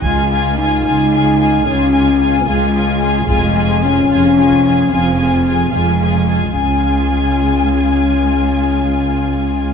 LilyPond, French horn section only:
\new Staff \with { instrumentName = "French horn section" } { \time 6/8 \key des \major \tempo 4. = 74 aes4 ees'2 | des'4. aes4. | aes4 des'2 | c'4. aes4. |
des'2.~ | des'2. | }